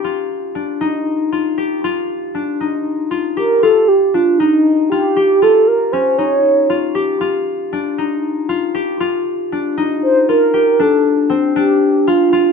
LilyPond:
<<
  \new Staff \with { instrumentName = "Soft synth lead" } { \time 7/8 \key f \mixolydian \tempo 4 = 117 r2. r8 | r2. bes'8 | a'8 g'8 f'8 ees'4 g'4 | a'8 bes'8 c''8 des''4. r8 |
r2. r8 | r2 c''8 bes'4 | a'4 r8 g'4 f'4 | }
  \new Staff \with { instrumentName = "Harp" } { \time 7/8 \key f \mixolydian f'4 d'8 ees'4 f'8 g'8 | f'4 d'8 ees'4 f'8 g'8 | f'4 d'8 ees'4 f'8 g'8 | f'4 des'8 ees'4 f'8 g'8 |
f'4 d'8 ees'4 f'8 g'8 | f'4 d'8 ees'4 f'8 g'8 | d'4 c'8 d'4 f'8 f'8 | }
>>